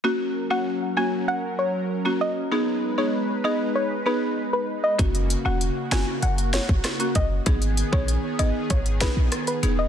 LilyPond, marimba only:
\new Staff \with { instrumentName = "Marimba" } { \time 4/4 \key fis \mixolydian \tempo 4 = 97 <ais cis' fis'>8. <ais cis' fis'>16 r8 <ais cis' fis'>16 r4. <ais cis' fis'>16 r8 | <b dis' gis'>8. <b dis' gis'>16 r8 <b dis' gis'>16 r8. <b dis' gis'>16 r4 r16 | <ais cis' fis'>8. <ais cis' fis'>16 r8 <ais cis' fis'>16 r4. <ais cis' fis'>16 r8 | <b dis' gis'>8. <b dis' gis'>16 r8 <b dis' gis'>16 r8. <b dis' gis'>16 r8. <b dis' gis'>16 r16 | }